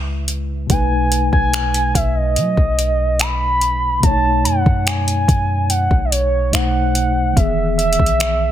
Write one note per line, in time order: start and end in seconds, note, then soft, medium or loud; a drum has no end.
0.00 0.66 C#2 loud
0.00 0.64 C#3 medium
0.00 0.66 G#3 medium
0.00 0.67 E4 medium
0.00 0.68 B4 medium
0.00 0.29 E5 medium
0.28 closed hi-hat medium
0.67 1.30 B1 loud
0.67 3.98 B2 medium
0.67 3.99 A3 medium
0.67 1.29 G#5 loud
0.67 kick loud
0.67 closed hi-hat medium
0.71 4.00 D#4 medium
0.71 4.01 B4 medium
1.12 closed hi-hat medium
1.32 1.93 B1 medium
1.32 1.96 G#5 loud
1.32 kick medium
1.53 finger snap medium
1.53 closed hi-hat medium
1.74 closed hi-hat medium
1.94 2.38 B1 loud
1.94 2.17 E5 medium
1.94 kick medium
1.94 closed hi-hat medium
2.16 3.21 D#5 loud
2.36 2.57 F#3 loud
2.36 closed hi-hat medium
2.57 3.99 B1 loud
2.57 kick medium
2.79 closed hi-hat medium
3.19 4.02 B5 loud
3.19 finger snap loud
3.19 closed hi-hat medium
3.61 closed hi-hat medium
4.00 4.47 B1 loud
4.00 6.48 B2 medium
4.00 6.49 A3 medium
4.00 4.46 A5 loud
4.00 kick loud
4.00 closed hi-hat medium
4.05 4.10 D4 soft
4.05 6.51 C#5 medium
4.11 6.53 D#4 medium
4.45 4.65 F#2 loud
4.45 4.87 F#5 loud
4.45 closed hi-hat medium
4.66 5.26 F#2 loud
4.66 kick medium
4.86 5.71 G#5 loud
4.86 finger snap medium
4.86 closed hi-hat medium
5.08 closed hi-hat medium
5.28 5.88 F#2 loud
5.28 kick medium
5.28 closed hi-hat medium
5.69 6.06 F#5 medium
5.69 closed hi-hat medium
5.91 6.51 B1 loud
5.91 kick medium
6.05 6.12 D#5 medium
6.11 6.54 C#5 loud
6.11 closed hi-hat medium
6.52 7.33 B1 loud
6.52 7.36 B2 medium
6.52 7.36 A3 medium
6.52 7.37 D#4 medium
6.52 7.37 C5 medium
6.52 7.38 F#5 loud
6.52 finger snap loud
6.52 closed hi-hat medium
6.95 closed hi-hat medium
7.33 7.97 E1 loud
7.33 8.52 E3 medium
7.33 8.52 B3 medium
7.33 7.77 E5 loud
7.33 kick loud
7.33 closed hi-hat medium
7.38 8.52 D#3 medium
7.38 8.52 G#4 medium
7.78 8.52 E5 loud
7.78 closed hi-hat soft
7.93 closed hi-hat soft
7.99 8.52 B1 medium
7.99 kick medium
8.06 closed hi-hat medium
8.20 finger snap loud
8.20 closed hi-hat medium